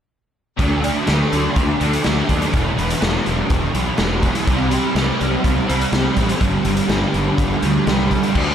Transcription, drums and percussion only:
0.59 kick, closed hi-hat
0.84 closed hi-hat
1.07 snare, closed hi-hat
1.33 closed hi-hat
1.56 kick, closed hi-hat
1.81 closed hi-hat
1.93 closed hi-hat
2.04 snare, closed hi-hat
2.29 kick, closed hi-hat
2.42 closed hi-hat
2.54 kick, closed hi-hat
2.79 closed hi-hat
2.90 closed hi-hat
3.02 snare, closed hi-hat
3.26 closed hi-hat
3.50 kick, closed hi-hat
3.75 closed hi-hat
3.98 snare, closed hi-hat
4.23 kick, closed hi-hat
4.35 closed hi-hat
4.47 kick, closed hi-hat
4.71 closed hi-hat
4.96 snare, closed hi-hat
5.21 closed hi-hat
5.44 kick, closed hi-hat
5.70 closed hi-hat
5.81 closed hi-hat
5.93 snare, closed hi-hat
6.17 kick, snare, closed hi-hat
6.29 closed hi-hat
6.41 kick, closed hi-hat
6.65 closed hi-hat
6.77 closed hi-hat
6.89 snare, closed hi-hat
7.14 closed hi-hat
7.38 kick, closed hi-hat
7.63 closed hi-hat
7.87 snare, closed hi-hat
8.11 kick, closed hi-hat
8.23 closed hi-hat
8.35 kick, crash

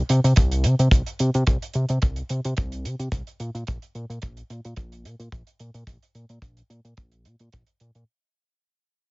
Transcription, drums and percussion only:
0.09 closed hi-hat
0.24 closed hi-hat
0.36 kick, closed hi-hat
0.52 closed hi-hat
0.64 closed hi-hat
0.79 closed hi-hat
0.91 kick, closed hi-hat
1.06 closed hi-hat
1.19 closed hi-hat
1.34 closed hi-hat
1.47 kick, closed hi-hat
1.62 closed hi-hat
1.74 closed hi-hat
1.89 closed hi-hat
2.02 kick, closed hi-hat
2.16 closed hi-hat
2.29 closed hi-hat
2.45 closed hi-hat
2.57 kick, closed hi-hat
2.72 closed hi-hat
2.85 closed hi-hat
2.99 closed hi-hat
3.12 kick, closed hi-hat
3.27 closed hi-hat
3.40 closed hi-hat
3.55 closed hi-hat
3.67 kick, closed hi-hat
3.82 closed hi-hat
3.95 closed hi-hat
4.10 closed hi-hat
4.22 kick, closed hi-hat
4.37 closed hi-hat
4.50 closed hi-hat
4.65 closed hi-hat
4.76 kick, closed hi-hat
4.92 closed hi-hat
5.05 closed hi-hat
5.20 closed hi-hat
5.32 kick, closed hi-hat
5.47 closed hi-hat
5.60 closed hi-hat
5.74 closed hi-hat
5.87 kick, closed hi-hat
6.03 closed hi-hat
6.15 closed hi-hat
6.29 closed hi-hat
6.42 kick, closed hi-hat
6.57 closed hi-hat
6.70 closed hi-hat
6.85 closed hi-hat
6.97 kick, closed hi-hat
7.12 closed hi-hat
7.25 closed hi-hat
7.39 closed hi-hat
7.53 kick, closed hi-hat
7.67 closed hi-hat
7.80 closed hi-hat
7.95 closed hi-hat

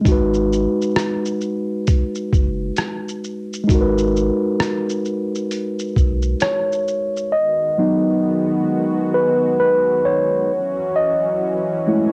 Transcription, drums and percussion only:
0.05 kick, closed hi-hat, shaker
0.34 shaker
0.53 shaker
0.82 shaker
0.96 cross-stick, closed hi-hat, shaker
1.25 shaker
1.41 shaker
1.87 kick, closed hi-hat, shaker
2.15 shaker
2.33 kick, shaker
2.77 cross-stick, closed hi-hat, shaker
3.08 shaker
3.24 shaker
3.53 shaker
3.69 kick, closed hi-hat, shaker
3.98 shaker
4.16 shaker
4.60 cross-stick, closed hi-hat, shaker
4.89 shaker
5.05 shaker
5.35 shaker
5.51 closed hi-hat, shaker
5.79 shaker
5.96 kick, shaker
6.22 shaker
6.40 cross-stick, closed hi-hat, shaker
6.72 shaker
6.88 shaker
7.17 shaker

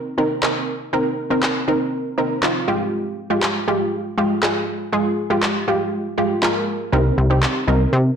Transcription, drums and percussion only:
0.43 snare, clap
1.43 snare, clap
2.43 snare, clap
3.42 snare, clap
4.43 snare, clap
5.43 snare, clap
6.43 snare, clap
7.43 snare, clap

